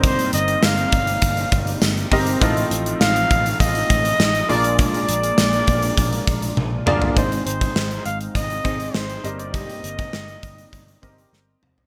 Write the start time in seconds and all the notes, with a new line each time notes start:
Already playing: G1 G2 A#3 C4 D#4 G4 A#4 D#5
0.03 C5, kick, closed hi-hat
0.19 closed hi-hat
0.33 G1 D#5, closed hi-hat
0.48 closed hi-hat
0.63 G1 F5, snare, tambourine
0.77 closed hi-hat
0.92 G1, kick, closed hi-hat
1.07 closed hi-hat
1.22 G1, kick, closed hi-hat
1.37 closed hi-hat
1.52 G1, kick, closed hi-hat
1.67 closed hi-hat
1.82 G1, snare, tambourine
1.97 closed hi-hat
2.11 G1 C4 D#4 G4 A#4 D#5, kick, open hi-hat
2.27 closed hi-hat
2.40 A1 A2 F3 A3 C4 D#4 F4 A4 D#5, kick, closed hi-hat
2.57 closed hi-hat
2.71 A1, closed hi-hat
2.86 closed hi-hat
3.01 A1 F5, snare, tambourine
3.16 closed hi-hat
3.31 A1, kick, closed hi-hat
3.46 closed hi-hat
3.60 A1 D#5, kick, closed hi-hat
3.75 closed hi-hat
3.90 A1, kick, closed hi-hat
4.05 closed hi-hat
4.20 A1, snare, tambourine
4.35 closed hi-hat
4.48 A#1 A#2 G#3 A#3 D4 F4 G#4 D5, open hi-hat
4.64 closed hi-hat
4.79 D5, kick, closed hi-hat
4.94 closed hi-hat
5.09 A#1, closed hi-hat
5.23 closed hi-hat
5.38 A#1, snare, tambourine
5.53 closed hi-hat
5.67 A#1, kick, closed hi-hat
5.83 closed hi-hat
5.97 A#1, kick, closed hi-hat
6.13 closed hi-hat
6.27 A#1, kick, closed hi-hat
6.42 closed hi-hat
6.57 A#1, high tom
6.86 G1 A#3 D4 F4 G#4 D5, mid tom
7.02 floor tom
7.16 G#1 G#2 G#3 C4 D#4 G#4 C5 D#5, kick, closed hi-hat
7.32 closed hi-hat
7.46 G#1 C5, closed hi-hat
7.61 kick, closed hi-hat
7.76 G#1, snare
7.91 closed hi-hat
8.05 G#1 F5, closed hi-hat
8.21 closed hi-hat
8.35 G#1 D#5, kick, closed hi-hat
8.50 closed hi-hat
8.64 G#1 C4 D#4 G#4 D#5, kick, closed hi-hat
8.80 closed hi-hat
8.94 G#1 C5, snare
9.10 closed hi-hat
9.23 G1 G2 A#3 C4 D#4 G4 A#4 D#5, closed hi-hat
9.39 D5, closed hi-hat
9.54 D#5, kick, closed hi-hat
9.70 closed hi-hat
9.84 G1, closed hi-hat
9.99 kick, closed hi-hat
10.13 G1, snare
10.28 closed hi-hat
10.43 G1, kick, closed hi-hat
10.58 closed hi-hat
10.73 G1, kick, closed hi-hat
10.88 closed hi-hat
11.02 G1 C4 G4 A#4 D#5, kick, closed hi-hat
11.18 closed hi-hat
11.33 G1, snare
11.62 F1, mid tom
11.78 floor tom